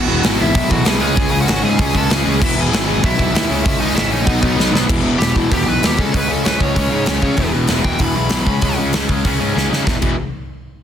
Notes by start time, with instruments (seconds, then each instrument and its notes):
Already playing: lead electric guitar F#4 F#5
0.07 picked electric bass E1, distorted electric guitar E2 B2 E3
0.23 picked electric bass G#1, distorted electric guitar E2 B2 E3, snare, open hi-hat
0.39 distorted electric guitar E2 B2 E3, lead electric guitar E4 E5
0.54 picked electric bass B1, distorted electric guitar E2 B2 E3, kick, open hi-hat
0.69 distorted electric guitar E2 B2 E3, lead electric guitar F#4 F#5, kick
0.85 picked electric bass C2, distorted electric guitar E2 B2 E3, lead electric guitar G#4 G#5, snare, open hi-hat
1.00 picked electric bass C#2, distorted electric guitar C#3 G#3 C#4, lead electric guitar G#4 G#5
1.16 picked electric bass C#2, distorted electric guitar C#3 G#3 C#4, kick, open hi-hat
1.30 picked electric bass C#2, distorted electric guitar C#3 G#3 C#4
1.41 lead electric guitar F#4 F#5
1.47 picked electric bass G#1, distorted electric guitar C#3 G#3 C#4, snare, open hi-hat
1.63 picked electric bass G#2, distorted electric guitar C#3 G#3 C#4, lead electric guitar G#4 G#5
1.78 picked electric bass C#2, distorted electric guitar C#3 G#3 C#4, kick, open hi-hat
1.93 picked electric bass C#2, distorted electric guitar C#3 G#3 C#4, lead electric guitar A4, kick
1.97 lead electric guitar A5
2.09 picked electric bass C#2, distorted electric guitar C#3 G#3 C#4, lead electric guitar G#4, snare, open hi-hat
2.14 lead electric guitar G#5
2.24 picked electric bass C#2, distorted electric guitar C#3 G#3 C#4
2.41 picked electric bass E1, distorted electric guitar E2 B2 E3, lead electric guitar E4 E5, kick, crash
2.56 picked electric bass E1, distorted electric guitar E2 B2 E3, lead electric guitar G#4
2.61 lead electric guitar G#5
2.70 picked electric bass G#1, distorted electric guitar E2 B2 E3, open hi-hat
2.75 snare
2.87 distorted electric guitar E2 B2 E3
3.02 picked electric bass B1, distorted electric guitar E2 B2 E3, lead electric guitar E4 E5, kick, open hi-hat
3.18 distorted electric guitar E2 B2 E3, kick
3.33 picked electric bass D#2, distorted electric guitar E2 B2 E3, snare, open hi-hat
3.49 picked electric bass C#2, distorted electric guitar C#3 G#3 C#4
3.65 picked electric bass C#2, distorted electric guitar C#3 G#3 C#4, lead electric guitar E4 E5, kick, open hi-hat
3.79 picked electric bass C#2, distorted electric guitar C#3 G#3 C#4, lead electric guitar D#4 D#5
3.94 picked electric bass G#1, distorted electric guitar C#3 G#3 C#4, lead electric guitar E4 E5, snare, open hi-hat
4.10 picked electric bass A#1, distorted electric guitar C#3 G#3 C#4, lead electric guitar D#4 D#5
4.25 picked electric bass B1, distorted electric guitar B2 F#3 B3, kick, open hi-hat
4.41 picked electric bass B1, distorted electric guitar B2 F#3 B3, kick
4.56 picked electric bass B1, distorted electric guitar B2 F#3 B3, snare
4.72 picked electric bass B1, distorted electric guitar B2 F#3 B3, snare
4.88 picked electric bass E1, distorted electric guitar E2 B2 E3, kick, crash
5.03 picked electric bass E1, distorted electric guitar E2 B2 E3
5.18 picked electric bass E1, distorted electric guitar E2 B2 E3, lead electric guitar G4, open hi-hat
5.22 snare
5.35 picked electric bass E1, distorted electric guitar E2 B2 E3, lead electric guitar E4, kick
5.50 picked electric bass E1, distorted electric guitar E2 B2 E3, lead electric guitar G4, kick, open hi-hat
5.66 picked electric bass B1, distorted electric guitar E2 B2 E3, lead electric guitar B4
5.81 picked electric bass D#2, distorted electric guitar E2 B2 E3, snare, open hi-hat
5.86 lead electric guitar G4
5.97 picked electric bass C#2, distorted electric guitar C#3 G#3 C#4, lead electric guitar A4, kick
6.13 picked electric bass C#2, distorted electric guitar C#3 G#3 C#4, kick, open hi-hat
6.17 lead electric guitar B4
6.28 picked electric bass C#2, distorted electric guitar C#3 G#3 C#4
6.32 lead electric guitar A4
6.44 picked electric bass C#2, distorted electric guitar C#3 G#3 C#4, lead electric guitar B4, snare, open hi-hat
6.59 picked electric bass C#2, distorted electric guitar C#3 G#3 C#4, lead electric guitar C#5, kick
6.74 picked electric bass C#2, distorted electric guitar C#3 G#3 C#4, kick, open hi-hat
6.89 picked electric bass G#2, distorted electric guitar C#3 G#3 C#4
7.06 picked electric bass C#2, distorted electric guitar C#3 G#3 C#4, snare, open hi-hat
7.22 distorted electric guitar C#3 G#3 C#4, picked electric bass C#3, kick
7.36 picked electric bass E1, distorted electric guitar E2 B2 E3, kick, open hi-hat
7.52 picked electric bass E1, distorted electric guitar E2 B2 E3
7.68 picked electric bass E1, distorted electric guitar E2 B2 E3, snare, open hi-hat
7.84 picked electric bass E1, distorted electric guitar E2 B2 E3, lead electric guitar G5, kick
7.99 picked electric bass E1, distorted electric guitar E2 B2 E3, lead electric guitar B5, kick, open hi-hat
8.15 picked electric bass B1, distorted electric guitar E2 B2 E3, lead electric guitar B5
8.29 picked electric bass B1, distorted electric guitar E2 B2 E3, snare, open hi-hat
8.46 picked electric bass C#2, distorted electric guitar C#3 G#3 C#4, kick
8.61 picked electric bass C#2, distorted electric guitar C#3 G#3 C#4, kick, open hi-hat
8.77 picked electric bass C#2, distorted electric guitar C#3 G#3 C#4
8.93 picked electric bass C#2, distorted electric guitar C#3 G#3 C#4, snare, open hi-hat
9.08 picked electric bass C#2, distorted electric guitar C#3 G#3 C#4, kick
9.24 picked electric bass C#2, distorted electric guitar C#3 G#3 C#4, kick, open hi-hat
9.39 picked electric bass G#2, distorted electric guitar C#3 G#3 C#4
9.54 picked electric bass C#2, distorted electric guitar C#3 G#3 C#4, snare
9.69 distorted electric guitar C#3 G#3 C#4, picked electric bass C#3
9.73 snare
9.85 picked electric bass E1, distorted electric guitar E2 B2 E3, kick, snare
10.01 picked electric bass E1, distorted electric guitar E2 B2 E3, kick, crash